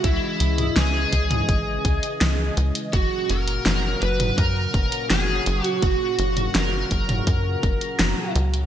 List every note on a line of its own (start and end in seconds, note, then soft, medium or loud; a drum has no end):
0.00 2.89 C#3 medium
0.00 2.89 E3 medium
0.00 2.89 G#3 medium
0.04 0.19 C#2 medium
0.04 0.79 E4 medium
0.04 2.90 D#5 medium
0.04 kick loud
0.04 closed hi-hat medium
0.40 0.70 C#2 medium
0.40 closed hi-hat medium
0.58 closed hi-hat medium
0.58 mid tom medium
0.76 1.06 C#2 loud
0.76 2.53 G#4 medium
0.76 snare loud
0.76 closed hi-hat medium
1.13 1.42 C#2 medium
1.13 kick medium
1.13 closed hi-hat medium
1.31 closed hi-hat medium
1.31 mid tom medium
1.49 1.78 G#1 medium
1.49 kick loud
1.49 closed hi-hat medium
1.85 2.00 C#2 loud
1.85 kick loud
1.85 closed hi-hat medium
2.03 closed hi-hat medium
2.21 2.51 C#2 loud
2.21 snare loud
2.21 closed hi-hat medium
2.57 2.72 C#2 loud
2.57 closed hi-hat medium
2.75 closed hi-hat medium
2.93 3.08 F#1 loud
2.93 8.66 A#2 medium
2.93 8.66 C#3 medium
2.93 8.66 F#3 medium
2.93 8.66 F#4 medium
2.93 3.31 F#4 loud
2.93 kick loud
2.93 closed hi-hat medium
3.29 3.59 F#1 medium
3.29 4.01 A#4 loud
3.29 closed hi-hat medium
3.48 closed hi-hat medium
3.66 3.95 F#1 loud
3.66 snare loud
3.66 closed hi-hat medium
4.02 4.31 F#1 medium
4.02 4.35 B4 loud
4.02 closed hi-hat medium
4.20 closed hi-hat medium
4.20 mid tom medium
4.38 4.68 F#2 medium
4.38 5.10 A#4 loud
4.38 kick loud
4.38 closed hi-hat medium
4.74 4.89 F#1 loud
4.74 kick loud
4.74 closed hi-hat medium
4.92 closed hi-hat medium
5.10 5.40 F#1 loud
5.10 5.65 G#4 medium
5.10 snare loud
5.10 closed hi-hat medium
5.46 5.61 F#1 medium
5.46 closed hi-hat medium
5.64 5.82 F#4 medium
5.64 closed hi-hat medium
5.82 5.97 F#1 loud
5.82 6.57 F#4 loud
5.82 kick loud
5.82 closed hi-hat medium
6.19 6.48 F#1 medium
6.19 closed hi-hat medium
6.37 closed hi-hat medium
6.37 mid tom medium
6.55 6.84 F#1 loud
6.55 8.31 A#4 medium
6.55 snare loud
6.55 closed hi-hat medium
6.91 7.21 F#1 medium
6.91 kick medium
6.91 closed hi-hat medium
7.09 closed hi-hat medium
7.09 mid tom medium
7.27 7.57 F#2 medium
7.27 kick loud
7.27 closed hi-hat medium
7.63 7.78 F#1 loud
7.63 kick loud
7.63 closed hi-hat medium
7.81 closed hi-hat medium
7.99 8.14 F#1 medium
7.99 snare loud
7.99 closed hi-hat medium
8.36 8.65 C#2 loud
8.36 closed hi-hat medium
8.54 closed hi-hat medium